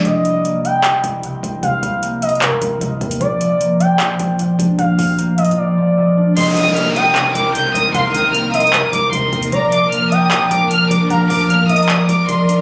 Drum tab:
CC |------------------------------------------------|------------------------------------------------|------------------------------------------------|------------------------------------------------|
HH |x-----x-----x-----x-----x-----x-----x-----x-----|x-----x-----x-----x-x-x-x-----x-----x-----x--x--|x-----x-----x-----x-----x-----x-----x-----x-----|x-----o-----x-----x-x-x-------------------------|
CP |------------------------x-----------------------|------------------------x-----------------------|------------------------x-----------------------|------------------------------------------------|
BD |o-----------------------------o-----------o-----|o-----------------------------o-----o-----o-----|o-----------------------------o-----------o-----|o-----------------------------------------------|

CC |x-----------------------------------------------|------------------------------------------------|------------------------------------------------|------------------------------------------------|
HH |x-----x-----x-----x-----x-----x-----x-----x-----|x-----x-----x-----x-x-x-x-----x-----x-----x--x--|x-----x-----x-----x-----x-----x-----x-----x-----|x-----o-----x-----x-x-x-x-----x-----x-----x-----|
CP |------------------------x-----------------------|------------------------x-----------------------|------------------------x-----------------------|------------------------x-----------------------|
BD |o-----------------------------o-----------o-----|o-----------------------------o-----o-----o-----|o-----------------------------o-----------o-----|o-----------------------------o-----o-----------|